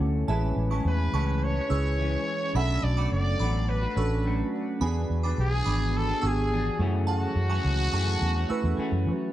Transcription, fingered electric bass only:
0.00 0.22 D2 medium
0.28 0.51 A1 loud
0.56 0.79 A1 medium
0.85 1.08 E2 medium
1.13 1.59 C#2 medium
1.70 2.15 C#2 medium
2.55 2.77 B1 loud
2.83 3.06 B1 medium
3.12 3.34 F#1 medium
3.40 3.85 A1 medium
3.97 4.42 A1 medium
4.81 5.04 E2 loud
5.10 5.32 E2 medium
5.38 5.61 B1 medium
5.66 6.12 G#1 medium
6.23 6.68 G#1 medium
6.79 7.25 F#2 medium
7.36 7.59 F#2 medium
7.65 7.87 C#2 medium
7.93 8.16 F#2 medium
8.22 8.44 E2 medium
8.50 muted fingered electric bass stroke soft
8.64 8.75 E2 medium
8.78 muted fingered electric bass stroke soft
8.92 9.08 F#2 medium
9.07 9.29 F#3 medium

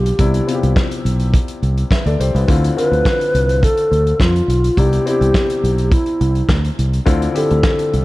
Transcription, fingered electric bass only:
0.00 0.11 B1 loud
0.19 0.39 C2 loud
0.63 0.73 C2 loud
1.05 1.36 B1 medium
1.62 1.82 C2 medium
2.06 2.15 D2 medium
2.20 2.30 C2 medium
2.35 2.44 C2 loud
2.49 2.69 D2 loud
2.91 3.01 D2 loud
3.34 3.65 C2 medium
3.91 4.11 D2 medium
4.20 4.40 F2 loud
4.48 4.68 B1 medium
4.78 4.98 C2 loud
5.21 5.30 C2 loud
5.63 5.94 B1 medium
6.21 6.41 C2 loud
6.49 6.69 D2 loud
6.79 6.98 C2 loud
7.07 7.27 D2 loud
7.51 7.60 D2 loud
7.94 8.05 C2 medium

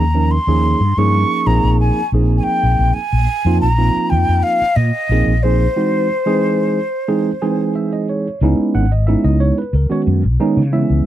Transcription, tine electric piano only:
0.14 0.35 F3 medium
0.14 0.36 A#3 medium
0.14 0.35 C#4 medium
0.14 0.36 D#4 medium
0.14 0.36 A#4 medium
0.48 0.79 F3 medium
0.48 0.79 A#3 medium
0.48 0.79 C#4 medium
0.48 0.79 D#4 medium
0.48 0.79 G#4 medium
0.98 1.45 F3 medium
0.98 1.45 A#3 medium
0.98 1.47 C#4 medium
0.98 1.45 D#4 medium
0.98 1.46 G#4 medium
1.46 2.00 F3 medium
1.46 2.00 A#3 medium
1.46 2.00 C4 medium
1.46 2.00 D#4 medium
1.46 2.00 G#4 medium
2.13 2.97 F3 medium
2.13 2.97 A#3 medium
2.13 2.97 C4 medium
2.13 2.98 D#4 medium
2.13 2.98 G#4 medium
3.46 3.67 F3 medium
3.46 3.67 A#3 medium
3.46 3.67 C4 medium
3.46 3.67 D#4 medium
3.46 3.67 F4 medium
3.78 4.62 F3 medium
3.78 4.62 A#3 medium
3.78 4.63 C4 medium
3.78 4.62 D#4 medium
3.78 4.62 F4 medium
5.11 5.32 F3 medium
5.11 5.32 A#3 medium
5.11 5.32 C4 medium
5.11 5.32 D#4 medium
5.11 5.32 G#4 medium
5.44 5.65 F3 medium
5.44 5.65 A#3 medium
5.44 5.65 C4 medium
5.44 5.65 D#4 medium
5.44 5.65 G#4 medium
5.76 6.08 E3 medium
5.76 6.08 G#3 medium
5.76 6.08 C4 medium
5.76 6.08 D#4 medium
5.76 6.08 F#4 medium
6.26 6.78 E3 medium
6.26 6.78 G#3 medium
6.26 6.78 C4 medium
6.26 6.79 D#4 medium
6.26 6.79 G#4 medium
7.08 7.30 E3 medium
7.08 7.30 G#3 medium
7.08 7.30 C4 medium
7.08 7.30 D#4 medium
7.08 7.30 G#4 medium
7.42 8.26 E3 medium
7.42 8.26 G#3 medium
7.42 8.27 C4 medium
7.42 8.27 D#4 medium
7.42 8.26 G#4 medium
7.42 7.73 G#5 medium
7.75 7.91 E5 medium
7.93 8.07 D#5 medium
8.09 8.40 C#5 medium
8.43 8.84 G#3 medium
8.43 8.84 B3 medium
8.43 8.84 C#4 medium
8.43 8.84 D#4 medium
8.43 8.85 E4 medium
8.75 8.91 F#5 medium
8.92 9.07 D#5 medium
9.07 9.61 G#3 medium
9.07 9.61 B3 medium
9.07 9.61 C#4 medium
9.07 9.61 D#4 medium
9.07 9.61 E4 medium
9.07 9.24 E5 medium
9.24 9.40 D#5 medium
9.40 9.57 C#5 medium
9.58 9.73 B4 medium
9.75 9.91 A#4 medium
9.89 10.21 D#3 medium
9.89 10.21 G#3 medium
9.89 10.22 B3 medium
9.89 10.22 C#4 medium
9.89 10.22 F#4 medium
9.89 10.01 C#5 medium
10.40 10.61 D#3 medium
10.40 10.61 G#3 medium
10.40 10.61 B3 medium
10.40 10.61 C#4 medium
10.40 10.61 D#4 medium
10.72 11.06 E3 medium
10.72 11.06 G#3 medium
10.72 11.06 B3 medium
10.72 11.06 C#4 medium
10.72 11.06 E4 medium
10.72 11.05 E5 medium

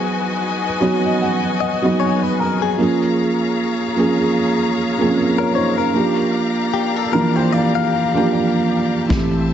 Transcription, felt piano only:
0.00 0.63 F#3 medium
0.00 0.64 B3 medium
0.00 0.65 D#4 medium
0.00 2.81 E4 medium
0.00 0.65 G#4 loud
0.00 2.81 C5 medium
0.80 1.68 F#3 medium
0.80 1.68 B3 medium
0.80 1.69 D#4 medium
0.80 1.70 F#4 medium
0.80 1.03 C#5 medium
1.05 1.20 D#5 medium
1.22 1.58 F#5 medium
1.61 1.97 F#5 medium
1.82 2.67 F#3 medium
1.82 2.68 B3 medium
1.82 2.69 D#4 medium
1.82 2.69 F#4 medium
2.01 2.37 G#5 medium
2.40 2.76 A#5 medium
2.77 3.84 F3 medium
2.77 3.84 A#3 medium
2.77 3.85 C#4 medium
2.77 3.85 G#4 medium
3.96 4.83 F3 medium
3.96 4.84 A#3 medium
3.96 4.85 C#4 medium
3.96 4.85 G#4 loud
4.98 5.83 F3 medium
4.98 5.84 A#3 medium
4.98 5.05 C4 medium
4.98 5.17 G#4 medium
5.06 5.15 C#4 medium
5.16 5.38 C#4 medium
5.16 5.38 A#4 medium
5.39 5.55 F4 medium
5.39 5.54 C#5 medium
5.55 5.77 D#4 medium
5.55 5.77 C5 medium
5.78 6.16 C#4 medium
5.78 6.16 A#4 medium
5.93 6.99 F3 medium
5.93 7.00 A#3 medium
5.93 7.00 D4 medium
5.93 7.01 G4 medium
7.12 8.01 E3 medium
7.12 7.99 F3 medium
7.12 8.00 A#3 medium
7.12 8.00 D4 medium
7.12 7.34 A#5 medium
7.36 7.51 G5 medium
7.53 8.28 F5 medium
8.14 8.99 F3 medium
8.14 9.00 A#3 medium
8.14 9.00 D4 medium
8.14 9.01 G4 loud
8.32 9.07 D5 medium
9.09 9.54 E3 medium
9.09 9.54 A3 medium
9.09 9.54 C4 medium
9.09 9.54 G4 medium

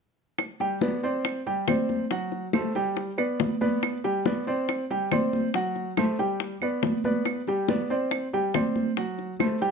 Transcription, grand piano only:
0.60 0.78 G3 medium
0.60 0.78 G4 medium
0.60 0.78 G5 medium
0.82 0.99 B3 medium
0.82 1.00 B4 medium
0.82 1.00 D5 medium
1.03 1.39 C4 medium
1.03 1.39 C5 medium
1.03 1.39 D5 medium
1.46 1.64 G3 medium
1.46 1.64 G4 medium
1.46 1.64 G5 medium
1.68 2.03 C4 medium
1.68 2.03 C5 medium
1.68 2.04 D5 medium
2.11 2.46 F#3 medium
2.11 2.46 F#4 medium
2.11 2.46 F#5 medium
2.54 2.71 A3 medium
2.54 2.72 A4 medium
2.54 2.72 C5 medium
2.75 3.11 G3 medium
2.75 3.11 G4 medium
2.75 3.11 G5 medium
3.18 3.53 B3 medium
3.18 3.54 B4 medium
3.18 3.54 D5 medium
3.61 3.96 B3 medium
3.61 3.97 B4 medium
3.61 3.97 D5 medium
4.04 4.22 G3 medium
4.04 4.22 G4 medium
4.04 4.22 G5 medium
4.26 4.43 B3 medium
4.26 4.43 B4 medium
4.26 4.44 D5 medium
4.47 4.82 C4 medium
4.47 4.83 C5 medium
4.47 4.83 D5 medium
4.90 5.08 G3 medium
4.90 5.08 G4 medium
4.90 5.08 G5 medium
5.12 5.47 C4 medium
5.12 5.47 C5 medium
5.12 5.47 D5 medium
5.55 5.90 F#3 medium
5.55 5.90 F#4 medium
5.55 5.90 F#5 medium
5.98 6.15 A3 medium
5.98 6.16 A4 medium
5.98 6.16 C5 medium
6.19 6.54 G3 medium
6.19 6.54 G4 medium
6.19 6.54 G5 medium
6.62 6.97 B3 medium
6.62 6.97 B4 medium
6.62 6.97 D5 medium
7.05 7.40 B3 medium
7.05 7.40 B4 medium
7.05 7.40 D5 medium
7.48 7.65 G3 medium
7.48 7.65 G4 medium
7.48 7.66 G5 medium
7.69 7.87 B3 medium
7.69 7.87 B4 medium
7.69 7.87 D5 medium
7.90 8.25 C4 medium
7.90 8.26 C5 medium
7.90 8.26 D5 medium
8.33 8.51 G3 medium
8.33 8.51 G4 medium
8.33 8.51 G5 medium
8.55 8.90 C4 medium
8.55 8.90 C5 medium
8.55 8.90 D5 medium
8.97 9.32 F#3 medium
8.97 9.32 F#4 medium
8.97 9.33 F#5 medium
9.40 9.57 A3 medium
9.40 9.57 A4 medium
9.40 9.58 C5 medium
9.61 9.71 G3 medium
9.61 9.71 G4 medium
9.61 9.71 G5 medium

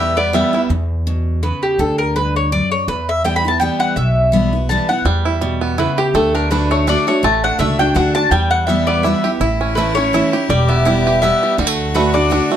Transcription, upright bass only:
0.00 0.42 E2 medium
0.69 1.50 E2 medium
1.79 2.59 D2 medium
2.88 3.68 E2 medium
3.96 4.77 B1 medium
5.05 5.85 E2 medium
6.14 6.94 D2 medium
7.23 7.50 A1 medium
7.59 7.90 C#2 medium
7.95 8.26 D2 medium
8.31 9.12 E2 medium
9.40 10.21 A1 medium
10.49 11.30 E1 loud
11.58 12.38 D2 medium

